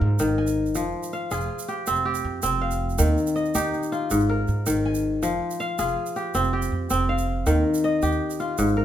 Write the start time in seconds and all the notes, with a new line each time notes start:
Already playing: G#2 D#4 F4 A#4
0.01 G#2
0.19 G#1 D#3, shaker
0.38 G#5
0.47 shaker
0.66 shaker
0.75 F1 F3, shaker
1.03 shaker
1.13 F5, shaker
1.31 F1 F4 G#4, shaker
1.41 shaker
1.59 shaker
1.68 G4, shaker
1.87 F1 C4, shaker
1.96 shaker
2.05 G4
2.14 shaker
2.24 F2
2.42 F1 C4, shaker
2.61 F5
2.71 shaker
2.90 shaker
2.98 D#2 D#3, shaker
3.18 shaker
3.27 shaker
3.36 D#5, shaker
3.45 shaker
3.55 D#2 D#4 G4, shaker
3.74 shaker
3.83 shaker
3.92 F4, shaker
4.10 G#1 G#2, shaker
4.20 shaker
4.29 A#4
4.48 G#2, shaker
4.66 G#1 D#3, shaker
4.86 G#5
4.94 shaker
5.23 F1 F3, shaker
5.50 shaker
5.60 F5, shaker
5.78 F1 F4 G#4, shaker
5.88 shaker
6.06 shaker
6.16 G4, shaker
6.34 F1 C4, shaker
6.44 shaker
6.53 G4
6.62 shaker
6.72 F2
6.90 F1 C4, shaker
7.09 F5
7.18 shaker
7.46 D#2 D#3, shaker
7.74 shaker
7.84 D#5, shaker
8.02 D#2 G4, shaker
8.12 shaker
8.30 shaker
8.39 F4, shaker
8.58 G#1 G#2, shaker
8.68 shaker
8.77 A#4